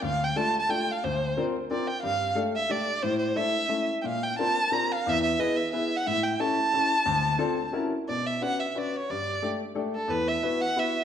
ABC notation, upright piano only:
X:1
M:3/4
L:1/8
Q:1/4=179
K:Dm
V:1 name="Upright piano"
D,,2 [A,DFA] z [A,DFA] z | D,,2 [CDFB] z [CDFB] z | G,,2 [A,DGA] z [A,DGA] z | A,,2 [A,DEA] z [A,^CEA] z |
B,,2 [CDFB] z [CDFB] z | E,,2 [=B,E^G=B] z [B,EGB] z | A,,2 [^CEGA] z [CEGA] z | D,,2 [CDFA] z [^CE^F^A] z |
[K:Bm] B,,2 [CDFB] z [CDFB] z | G,,2 [A,DGA] z [A,DGA] z | E,,2 [B,EFB] z [B,EFB] z |]